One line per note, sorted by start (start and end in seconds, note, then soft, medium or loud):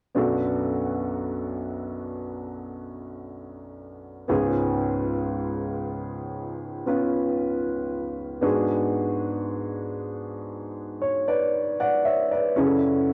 0.14 4.26 B1 soft
0.14 4.26 F#2 soft
0.14 4.25 B3 soft
0.14 4.26 D4 soft
0.14 4.26 F#4 soft
0.14 4.27 A4 medium
4.28 8.39 C#2 soft
4.28 8.40 G#2 soft
4.28 6.84 B3 soft
4.28 6.84 C#4 soft
4.28 6.85 F4 soft
4.28 6.85 G#4 medium
6.86 8.40 B3 soft
6.86 8.43 C#4 soft
6.86 8.43 F4 soft
6.86 8.44 B4 soft
8.41 12.53 G#2 soft
8.41 12.53 G#3 medium
8.41 12.52 B3 soft
8.41 12.53 D4 soft
8.41 12.53 F#4 soft
8.41 12.54 G#4 medium
11.02 11.27 C#5 soft
11.28 11.78 B4 soft
11.28 11.77 D5 soft
11.80 12.05 D5 soft
11.80 12.05 F#5 soft
12.05 12.30 C#5 soft
12.05 12.30 E5 soft
12.31 12.81 B4 soft
12.31 12.81 D5 soft
12.56 13.13 F#2 medium
12.56 13.13 C#3 soft
12.56 13.13 C#4 soft
12.56 13.13 E4 soft
12.56 13.13 F#4 soft
12.56 12.65 G#4 soft
12.65 13.13 A4 medium